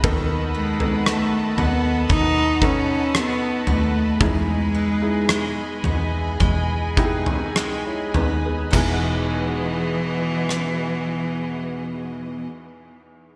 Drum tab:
CC |----------------|----------------|x---------------|
SD |----r-------r---|----r-------r---|------r---------|
FT |o--o--o-o-----o-|o-----o-o--o--o-|----------------|
BD |o-------o-o-----|o-------o-o-----|o---------------|